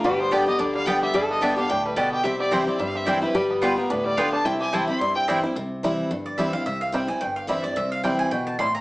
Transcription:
Already playing: D4
0.04 G1 G2 G3 G4 B4
0.19 B3 C5
0.31 D3 G3 B3 D4 G4 D5 G5
0.46 B3 G4 D#5
0.59 D2 D3 D4 D5
0.74 G3 F5
0.86 D3 G3 B3 G4 D5 G5
1.02 G4 E5
1.14 G1 G2 G3 A4 D5
1.30 B3 D#5
1.41 D3 G3 B3 D4 G4 D5 E5 A5
1.56 B3 G4 F5
1.69 D2 A2 D4 G5
1.85 G3 B4
1.96 B2 B3 G4 D5 A5
2.12 G4 G5
2.24 C2 C3 C4 G4 E5
2.40 G4 D5
2.51 E3 G3 C4 E4 C5 G5
2.66 C4 E4 D5
2.79 G1 G2 G3 E5
2.88 F5
2.95 C4 E5
3.05 E3 G3 C4 E4 C5 D5 G5
3.21 C4 E4 B4
3.35 G1 G3 G4
3.50 B3
3.62 G3 B3 F4 B4 G5
3.77 B3 F4 A#4
3.90 D2 A2 D4 B4
4.04 G3 D5
4.17 D3 B3 F4 B4 F5 G5
4.32 D4 A5
4.45 C2 C3 C4 E4 G5
4.60 G4 G#5
4.73 E3 G3 C4 E4 C5 G5 A5
4.87 C4 E4 B5
4.99 G2 G3 C6
5.15 C4 G5
5.28 E3 G3 C4 E4 C5 G5
5.43 C4 E4
5.55 C2 C3
5.83 E3 G3 C4 E4
6.11 G1 G2
6.26 D5
6.38 E3 G3 C4 E4 E5
6.53 C4 E4 F5
6.66 C2 C3 E5
6.81 F5
6.92 E3 G3 C4 E4 G5
7.08 C4 E4 G#5
7.21 G1 G2 G5
7.36 F5
7.47 E3 G3 C4 E4 E5
7.64 C4 E4 D5
7.76 C2 C3 E5
7.92 F5
8.03 E3 G3 C4 E4 G5
8.19 G#5
8.31 G1 B2 G5
8.47 A5
8.59 A2 G3 C4 E4 C6
8.75 A#5

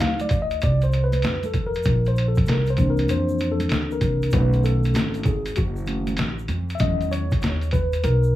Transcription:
Already playing: F#3 A3 D#4
0.00 D2 F5, snare, closed hi-hat
0.19 D5, closed hi-hat, high conga, shaker
0.29 kick, closed hi-hat, low conga, shaker
0.42 D#5
0.51 closed hi-hat, shaker
0.61 C2 D5, kick, closed hi-hat, shaker
0.81 C5, closed hi-hat, shaker
0.92 closed hi-hat, shaker
1.04 B4
1.12 closed hi-hat, high conga, shaker
1.22 F2, snare, closed hi-hat, shaker
1.43 A4, closed hi-hat, high conga, shaker
1.54 kick, closed hi-hat, high conga, low conga, shaker
1.67 A#4
1.74 closed hi-hat, shaker
1.83 A#1, kick, closed hi-hat, shaker
2.05 C5, closed hi-hat, shaker
2.16 closed hi-hat, shaker
2.28 A4
2.35 kick, closed hi-hat, shaker
2.46 C2 A#4, snare, closed hi-hat, shaker
2.66 C5, closed hi-hat, shaker
2.77 E3 A#3 C4 D4, kick, closed hi-hat, low conga, shaker
2.90 A#4
2.97 closed hi-hat, shaker
3.08 F2 C5, closed hi-hat, high conga, shaker
3.29 shaker
3.39 closed hi-hat, shaker
3.52 A4
3.60 closed hi-hat, high conga, shaker
3.69 D2, snare, closed hi-hat, shaker
3.91 A#4, shaker
4.01 C2, kick, closed hi-hat, high conga, low conga, shaker
4.22 closed hi-hat, shaker
4.31 B1 D#3 A3 C#4 B4, kick, closed hi-hat, shaker
4.53 closed hi-hat, shaker
4.64 A4, closed hi-hat, shaker
4.83 closed hi-hat, shaker
4.94 G#1, snare, closed hi-hat, shaker
5.14 closed hi-hat, shaker
5.23 G#4, kick, closed hi-hat, low conga, shaker
5.46 closed hi-hat, shaker
5.56 F#1 F#4, kick, closed hi-hat, high conga, shaker
5.76 shaker
5.86 D#3 A3 C#4, closed hi-hat, shaker
6.07 closed hi-hat, high conga, shaker
6.17 A1, snare, closed hi-hat, shaker
6.39 shaker
6.48 F2, closed hi-hat, high conga, low conga, shaker
6.69 closed hi-hat, shaker
6.75 E5, shaker
6.80 E2 D#3 F#3 G#3 C#4 D#5, kick, closed hi-hat
7.01 closed hi-hat, shaker
7.12 C#5, closed hi-hat, shaker
7.31 kick, closed hi-hat, shaker
7.42 D#2, snare, closed hi-hat, shaker
7.61 closed hi-hat, shaker
7.71 B4, kick, closed hi-hat, low conga, shaker
7.92 closed hi-hat, shaker
8.04 B1 A#4, closed hi-hat, high conga, shaker
8.23 shaker

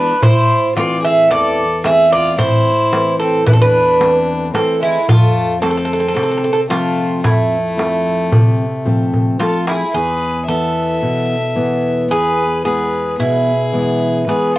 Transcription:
Already playing: E3 G#3 B3 D4 B4
0.23 A2 E4 C5, darbuka dum
0.76 E3 A3 C4 F4 D5, darbuka tek
1.03 G#4 E5, darbuka tek
1.31 E2 A4 D5, darbuka tek
1.58 darbuka tek
1.84 E3 A3 C4 G#4 E5, darbuka tek
2.12 F4 D5, darbuka tek
2.38 A2 E4 C5, darbuka tek, darbuka dum
2.92 E3 A3 C4, darbuka tek
3.20 C4 A4, darbuka tek
3.46 E2 E4 B4, darbuka dum
3.53 C4 A4
3.62 D4 B4
4.00 E3 A3 C4, darbuka tek
4.54 E3 A3 C4 A4, darbuka tek
4.82 G#3 E4
5.08 F2 A3 F4, darbuka dum
5.36 darbuka tek
5.62 F3 A3 C4 A4, darbuka tek
5.70 A4
5.77 A4
5.85 A4
5.93 A4
6.00 A4
6.08 A4
6.15 C3 A4, darbuka tek
6.23 A4
6.31 A4
6.38 A4
6.44 A4, darbuka tek
6.53 A4
6.69 F3 A3 C4 F4, darbuka tek
6.98 darbuka tek
7.24 F2 A3 E4, darbuka tek, darbuka dum
7.77 F3 A3 C4, darbuka tek
8.06 darbuka tek
8.31 C3, darbuka dum
8.60 darbuka tek
8.85 F3 A3 C4, darbuka dum
9.14 darbuka dum
9.39 F3 A3 C4 F4 A4, darbuka tek
9.67 E4 G#4, darbuka tek
9.94 E2 G#4 B4
10.48 E3 B3 A4 E5
11.02 B2
11.55 E3 B3
12.10 E2 G#4 B4
12.64 E3 G#3 B3 G#4 B4
13.19 B2 E4 G#4
13.73 E3 G#3 B3
14.27 E3 G#3 B3 G#4 B4
14.55 F4 A4

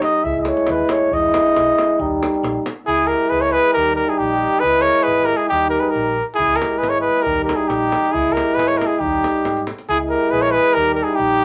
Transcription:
Already playing: G3 D#4
0.02 D#5, davul high
0.23 C#2 G#3 E4 E5, davul low
0.41 D#5
0.45 C#5, davul high
0.57 davul high
0.67 D#2 B4, davul high
0.89 C#5, davul high
1.11 E2 G#3 E4 D#5, davul low
1.34 davul high
1.46 davul high
1.56 B1, davul high
1.78 davul high
1.99 D#2 G3 D#4, davul low
2.23 davul high
2.34 davul high
2.43 A#1, davul high
2.66 davul high
2.87 C#2 G#3 E4 G#4
3.07 G4 A#4
3.29 C#2 G#4 B4
3.41 A#4 C#5
3.52 G#4 B4
3.72 G4 A#4
3.76 D#2 G3 D#4
3.94 G4 A#4
4.06 E4 G#4
4.18 A#1 D#4 G4
4.59 G#3 G#4 B4
4.64 C#2 E4
4.81 A#4 C#5
5.02 G#4 B4
5.07 G#1
5.24 G4 A#4
5.36 E4 G#4
5.47 G3 D#4 G4
5.52 D#2
5.70 G4 A#4
5.80 G#4 B4
5.89 G4 A#4
5.95 A#1
6.34 E4 G#4
6.39 C#2 G#3, davul low
6.56 G4 A#4
6.62 davul high
6.78 G#4 B4
6.82 G#1, davul high
6.87 A#4 C#5
6.99 G#4 B4
7.16 davul high
7.22 G4 A#4
7.26 D#2 G3 D#4, davul low
7.43 G4 A#4
7.49 davul high
7.54 E4 G#4
7.65 D#4 G4
7.70 A#1, davul high
7.92 davul high
8.05 davul high
8.12 C#2 G#3 E4 G#4, davul low
8.32 G4 A#4
8.37 davul high
8.55 G#1 G#4 B4
8.59 davul high
8.67 A#4 C#5
8.78 G4 A#4, davul high
8.87 E4 G#4
8.99 D#2 G3 D#4 G4
9.03 davul low
9.14 davul high
9.24 davul high
9.36 davul high
9.45 G#2, davul high
9.57 davul high
9.67 davul high
9.78 davul high
9.88 C#2 G#3 E4 G#4
10.10 G4 A#4
10.31 A#1 G#4 B4
10.42 A#4 C#5
10.51 G#4 B4
10.73 D#2 G3 G4 A#4
10.78 D#4
10.95 G4 A#4
11.03 G#4
11.08 E4
11.15 G4
11.19 A#1 D#4

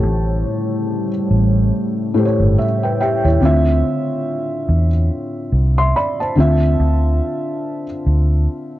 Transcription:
Already playing: A2 C#3 G3 A3 G4 C5 C#5 E5 A5
0.03 A1
1.31 A1
2.14 A2 A3 G4
2.18 C5
2.25 C#5
2.40 G1
2.58 E5
2.83 B4 G5
3.00 G4 E5 G5
3.25 D#2 E4 C#5
3.40 D2 D3 C4 F4
3.45 E5
4.69 E2
5.52 C2
5.78 E5 C6
5.96 D5 B5
6.20 C5 A5
6.36 D2 D3 C4 F4
6.40 E5
6.80 D2
8.06 D2

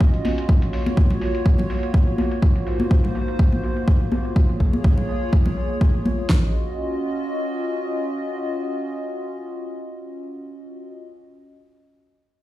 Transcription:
Already playing: C#4 F4 F#4 D#5
0.01 kick
0.14 closed hi-hat
0.25 open hi-hat, high conga
0.38 closed hi-hat
0.49 A#3 C#5, kick
0.62 closed hi-hat
0.73 open hi-hat
0.86 closed hi-hat, high conga
0.97 kick
1.10 closed hi-hat, low conga
1.21 open hi-hat
1.35 closed hi-hat
1.46 kick
1.58 closed hi-hat, high conga, low conga
1.70 open hi-hat
1.83 closed hi-hat
1.94 kick
2.07 closed hi-hat
2.18 open hi-hat, high conga
2.31 closed hi-hat
2.42 G#2 C5, kick
2.56 closed hi-hat
2.67 open hi-hat
2.80 closed hi-hat, high conga
2.91 kick
3.04 closed hi-hat, low conga
3.15 open hi-hat
3.28 closed hi-hat
3.39 kick
3.52 closed hi-hat, high conga
3.63 open hi-hat
3.77 closed hi-hat
3.88 kick
4.01 closed hi-hat
4.12 open hi-hat, high conga
4.25 closed hi-hat
4.36 F4 G#4 C#5, kick
4.49 closed hi-hat
4.60 kick, open hi-hat
4.73 closed hi-hat, high conga
4.84 kick
4.98 closed hi-hat, low conga
5.09 open hi-hat
5.22 closed hi-hat
5.33 kick
5.45 closed hi-hat, high conga, low conga
5.57 open hi-hat
5.70 closed hi-hat
5.81 kick
5.94 closed hi-hat
6.05 open hi-hat, high conga, low conga
6.18 closed hi-hat
6.29 C#4 F4 F#4 D#5, kick, snare

